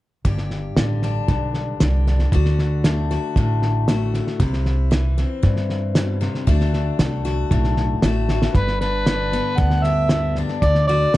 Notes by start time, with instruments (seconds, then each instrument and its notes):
0.25 upright bass G1, steel-string acoustic guitar G2 G4, kick, snare
0.38 snare
0.51 snare
0.76 upright bass A1, steel-string acoustic guitar D3, snare, hi-hat pedal
1.02 steel-string acoustic guitar D4, snare
1.28 upright bass B1, steel-string acoustic guitar G2, kick, snare
1.54 snare
1.80 upright bass C2, steel-string acoustic guitar D3 G4, snare, hi-hat pedal
2.07 steel-string acoustic guitar D4, snare
2.19 snare
2.32 upright bass D2, steel-string acoustic guitar D3 F#4, kick, snare
2.45 snare
2.59 snare
2.84 steel-string acoustic guitar A3, snare, hi-hat pedal
3.11 steel-string acoustic guitar F#4, snare
3.36 upright bass A1, steel-string acoustic guitar A2, kick, snare
3.62 snare
3.88 steel-string acoustic guitar A3 F#4, snare, hi-hat pedal
4.14 steel-string acoustic guitar F#4, snare
4.27 snare
4.40 upright bass C2, steel-string acoustic guitar C3 E4, kick, snare
4.53 snare
4.66 snare
4.91 steel-string acoustic guitar E3, snare, hi-hat pedal
5.18 steel-string acoustic guitar C4, snare
5.43 steel-string acoustic guitar G2, upright bass G2, kick, snare
5.56 snare
5.70 snare
5.95 steel-string acoustic guitar B2, snare, hi-hat pedal
6.21 steel-string acoustic guitar C3, snare
6.35 snare
6.47 upright bass D2, steel-string acoustic guitar D3 A3 D4 F#4, kick, snare
6.61 snare
6.73 snare
6.99 upright bass C2, steel-string acoustic guitar A3, snare, hi-hat pedal
7.25 steel-string acoustic guitar F#4, snare
7.51 upright bass B1, steel-string acoustic guitar A2, kick, snare
7.64 snare
7.77 snare
8.02 upright bass A1, steel-string acoustic guitar A3 F#4, snare, hi-hat pedal
8.29 steel-string acoustic guitar F#4, snare
8.42 snare
8.54 upright bass G1, steel-string acoustic guitar G2, harmonica B4, kick, snare
8.68 snare
8.81 steel-string acoustic guitar D4, harmonica B4, snare
9.06 steel-string acoustic guitar D3, snare, hi-hat pedal
9.32 steel-string acoustic guitar B3, snare
9.57 upright bass D2, steel-string acoustic guitar G2, harmonica F#5, kick, snare
9.71 snare
9.84 steel-string acoustic guitar G4, harmonica E5, snare
10.09 steel-string acoustic guitar D3, snare, hi-hat pedal
10.35 steel-string acoustic guitar D4, snare
10.49 snare
10.62 upright bass D2, steel-string acoustic guitar D3, harmonica D5, kick, snare
10.75 snare
10.87 steel-string acoustic guitar F#4, harmonica D5, snare
11.14 snare, hi-hat pedal